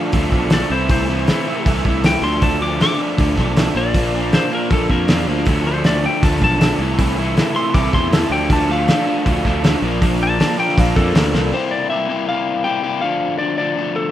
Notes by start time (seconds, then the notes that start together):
Already playing: D3 F3 A3 D4 F5
0.12 D2 D3 F3 A3 D4, kick, open hi-hat
0.32 B1 D3 F3 A3 D4, kick
0.50 D3 F3 A3 D4 D5, snare, open hi-hat
0.70 C2 C3 E3 A3 E4 C5
0.89 C3 E3 A3 E4 C5, kick, open hi-hat
1.09 C3 E3 A3 E4
1.27 C3 E3 A3 E4, snare, open hi-hat
1.46 C3 E3 A3 E4
1.66 C2 C3 E3 A3 E4, kick, open hi-hat
1.85 C2 C3 E3 A3 E4, kick
2.04 C3 E3 A3 E4 G5, snare, open hi-hat
2.22 D2 D3 F3 A3 D4 C6
2.41 D3 F3 A3 D4 A5, kick, open hi-hat
2.60 D3 F3 A3 D4 D6
2.80 D3 F3 A3 D4 D6, snare, open hi-hat
2.99 D3 F3 A3 D4
3.17 D2 D3 F3 A3 D4, kick, open hi-hat
3.37 B1 D3 F3 A3 D4, kick, snare
3.57 D3 F3 A3 D4, snare, open hi-hat
3.75 A#1 A#2 F3 A#3 D4 D5
3.94 A#2 F3 A#3 D4, kick, open hi-hat
4.13 A#2 F3 A#3 D4
4.32 A#2 F3 A#3 D4 C5, snare, open hi-hat
4.50 A#2 F3 A#3 D4
4.55 A#4
4.69 A#1 A#2 F3 A#3 D4, kick, open hi-hat
4.73 A4
4.89 F2 A#2 F3 A#3 D4 A#4, kick
5.08 E2 A#2 F3 A#3 D4, snare, open hi-hat
5.27 D2 A#2 F3 A#3 D4
5.46 D2 D3 F3 A3 D4, kick, open hi-hat
5.66 D3 F3 A3 D4 C5
5.84 D3 F3 A3 D4 D5, snare, open hi-hat
6.05 D3 F3 A3 D4 G5
6.23 D2 D3 F3 A3 D4 A5, kick, open hi-hat
6.42 B1 D3 F3 A3 D4 A5, kick
6.61 D3 F3 A3 D4, snare, open hi-hat
6.79 C2 C3 E3 A3 E4
6.99 C3 E3 A3 E4, kick, open hi-hat
7.19 C3 E3 A3 E4
7.37 C3 E3 A3 E4, snare, open hi-hat
7.56 C3 E3 A3 E4 C6
7.74 C2 C3 E3 A3 E4 D6, kick, open hi-hat
7.93 E2 C3 E3 A3 E4 C6, kick, snare
8.12 C3 E3 A3 E4 A5, snare, open hi-hat
8.30 D2 D3 F3 A3 D4 G5
8.50 D3 F3 A3 D4 A5, kick, open hi-hat
8.69 D3 F3 A3 D4 F5
8.88 D3 F3 A3 D4, snare, open hi-hat
9.07 D3 F3 A3 D4
9.26 D2 D3 F3 A3 D4, kick, open hi-hat
9.45 D2 D3 F3 A3 D4, kick, snare
9.64 D3 F3 A3 D4, snare, open hi-hat
9.82 A#1 A#2 F3 A#3 D4
10.01 A#2 F3 A#3 D4, kick, open hi-hat
10.21 A#2 F3 A#3 D4 A5
10.39 A#2 F3 A#3 D4, snare, open hi-hat
10.58 A#2 F3 A#3 D4 G5
10.69 snare
10.77 A#1 A#2 F3 A#3 D4 F5, kick, open hi-hat
10.95 F2 A#2 F3 A#3 D4 A4 D5, kick
11.14 D2 A#2 F3 A#3 D4, snare, open hi-hat
11.32 C2 A#2 F3 A#3 D4, snare
11.52 C3 G3 A#3 E4 G4 C5
11.71 D5
11.90 C3 G3 A#3 E4 G4 E5
12.08 C3 G3 A#3 E4 G4
12.28 C3 G3 A#3 E4 G4 F5
12.64 C3 G3 A#3 E4 G4 G5
12.82 C3 G3 A#3 E4 G4
13.01 D3 F3 A3 D4 F5
13.38 D3 F3 A3 D4 D5
13.58 D3 F3 A3 D4 D5
13.77 D3 F3 A3 D4
13.96 A4